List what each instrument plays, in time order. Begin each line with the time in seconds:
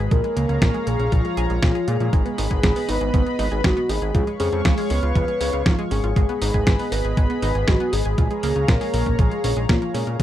Already playing: soft synth lead G#4, analog synth pad G#4
0.11 analog synth bass A#1, synth arpeggio sound F3, soft synth lead A#4, analog synth pad C#5 F5 A#5, kick, closed hi-hat
0.24 synth arpeggio sound G#3, closed hi-hat
0.36 analog synth bass C#2, synth arpeggio sound A#3, closed hi-hat
0.49 analog synth bass C#2, synth arpeggio sound C#4, closed hi-hat
0.62 analog synth bass A#1, synth arpeggio sound F3, kick, snare, closed hi-hat
0.74 synth arpeggio sound G#3, closed hi-hat
0.87 analog synth bass A#1, synth arpeggio sound A#3, soft synth lead G#4, closed hi-hat
1.00 analog synth bass A#1, synth arpeggio sound C#4, closed hi-hat
1.12 analog synth bass A#1, synth arpeggio sound F3, soft synth lead F4, kick, closed hi-hat
1.25 synth arpeggio sound G#3, closed hi-hat
1.37 analog synth bass A#1, synth arpeggio sound G#4, closed hi-hat
1.50 analog synth bass A#1, synth arpeggio sound G#3, closed hi-hat
1.63 analog synth bass A#2, synth arpeggio sound F3, soft synth lead F4, kick, snare, closed hi-hat
1.75 synth arpeggio sound G#4, closed hi-hat
1.88 analog synth bass A#2, synth arpeggio sound F4, soft synth lead G#4, closed hi-hat
2.00 analog synth bass A#2, synth arpeggio sound F3, closed hi-hat
2.13 analog synth bass G#1, synth arpeggio sound G#3, soft synth lead G#4, analog synth pad B4 D#5 B5, kick, closed hi-hat
2.25 synth arpeggio sound B3, closed hi-hat
2.38 analog synth bass G#1, synth arpeggio sound D#4, soft synth lead G#4, open hi-hat
2.51 analog synth bass G#1, synth arpeggio sound G#4, kick, closed hi-hat
2.63 analog synth bass G#1, synth arpeggio sound G#3, kick, snare, closed hi-hat
2.76 synth arpeggio sound B3, open hi-hat
2.88 analog synth bass G#1, synth arpeggio sound D#4, soft synth lead B4, open hi-hat
3.01 analog synth bass G#1, synth arpeggio sound G#4, closed hi-hat
3.14 analog synth bass G#1, synth arpeggio sound G#3, kick, closed hi-hat
3.26 synth arpeggio sound B3, closed hi-hat
3.39 analog synth bass G#1, synth arpeggio sound D#4, open hi-hat
3.51 analog synth bass G#1, synth arpeggio sound G#4, closed hi-hat
3.64 analog synth bass G#1, synth arpeggio sound G#3, soft synth lead F#4, kick, snare, closed hi-hat
3.77 synth arpeggio sound B3, closed hi-hat
3.89 analog synth bass G#1, synth arpeggio sound D#4, soft synth lead G#4, open hi-hat
4.02 analog synth bass G#1, synth arpeggio sound G#4, closed hi-hat
4.14 analog synth bass C#2, synth arpeggio sound F3, soft synth lead G#4, analog synth pad C#5 F5 C#6, kick, closed hi-hat
4.27 synth arpeggio sound G#3, closed hi-hat
4.40 analog synth bass F2, synth arpeggio sound C#4, soft synth lead G#4, open hi-hat
4.52 analog synth bass F2, synth arpeggio sound F4, closed hi-hat
4.65 analog synth bass C#2, synth arpeggio sound F3, kick, snare, closed hi-hat
4.78 synth arpeggio sound G#3, open hi-hat
4.90 analog synth bass C#2, synth arpeggio sound C#4, soft synth lead B4, open hi-hat
5.03 analog synth bass C#2, synth arpeggio sound F4, closed hi-hat
5.16 analog synth bass C#2, synth arpeggio sound F3, kick, closed hi-hat
5.28 synth arpeggio sound G#3, closed hi-hat
5.41 analog synth bass C#2, synth arpeggio sound C#4, open hi-hat
5.53 analog synth bass C#2, synth arpeggio sound F4, closed hi-hat
5.66 analog synth bass G#1, synth arpeggio sound F3, soft synth lead F4, kick, snare, closed hi-hat
5.79 synth arpeggio sound G#3, closed hi-hat
5.91 analog synth bass G#1, synth arpeggio sound C#4, soft synth lead G#4, open hi-hat
6.04 analog synth bass G#1, synth arpeggio sound F4, closed hi-hat
6.16 analog synth bass G#1, synth arpeggio sound G#3, analog synth pad G#4 B4 D#5 B5, soft synth lead G#4, kick, closed hi-hat
6.29 synth arpeggio sound B3, closed hi-hat
6.41 analog synth bass G#1, synth arpeggio sound D#4, soft synth lead G#4, open hi-hat
6.54 analog synth bass G#1, synth arpeggio sound G#4, kick, closed hi-hat
6.67 analog synth bass G#1, synth arpeggio sound G#3, kick, snare, closed hi-hat
6.79 synth arpeggio sound B3, open hi-hat
6.92 analog synth bass G#1, synth arpeggio sound D#4, soft synth lead B4, open hi-hat
7.04 analog synth bass G#1, synth arpeggio sound G#4, closed hi-hat
7.17 analog synth bass G#1, synth arpeggio sound G#3, kick, closed hi-hat
7.30 synth arpeggio sound B3, closed hi-hat
7.42 analog synth bass G#1, synth arpeggio sound D#4, open hi-hat
7.55 analog synth bass G#1, synth arpeggio sound G#4, closed hi-hat
7.68 analog synth bass G#1, synth arpeggio sound G#3, soft synth lead F#4, kick, snare, closed hi-hat
7.80 synth arpeggio sound B3, closed hi-hat
7.93 analog synth bass G#1, synth arpeggio sound D#4, soft synth lead G#4, open hi-hat
8.05 analog synth bass G#1, synth arpeggio sound G#4
8.18 analog synth bass A#1, synth arpeggio sound F3, soft synth lead G#4, analog synth pad C#5 F5 A#5, kick, closed hi-hat
8.31 synth arpeggio sound G#3, closed hi-hat
8.43 analog synth bass C#2, synth arpeggio sound A#3, open hi-hat
8.56 analog synth bass C#2, synth arpeggio sound C#4, closed hi-hat
8.68 analog synth bass A#1, synth arpeggio sound F3, soft synth lead A#4, kick, snare, closed hi-hat
8.81 synth arpeggio sound G#3, open hi-hat
8.94 analog synth bass A#1, synth arpeggio sound A#3, open hi-hat
9.06 analog synth bass A#1, synth arpeggio sound C#4, kick, closed hi-hat
9.19 analog synth bass A#1, synth arpeggio sound F3, soft synth lead G#4, kick, closed hi-hat
9.31 synth arpeggio sound G#3, closed hi-hat
9.44 analog synth bass A#1, synth arpeggio sound C#4, open hi-hat
9.57 analog synth bass A#1, synth arpeggio sound G#3, closed hi-hat
9.69 analog synth bass A#2, synth arpeggio sound A#3, soft synth lead F4, kick, snare, closed hi-hat
9.82 synth arpeggio sound A#3, closed hi-hat
9.94 analog synth bass A#2, synth arpeggio sound C#4, soft synth lead G#4, open hi-hat
10.07 analog synth bass A#2, synth arpeggio sound A#3, closed hi-hat
10.20 analog synth bass G#1, synth arpeggio sound G#3, kick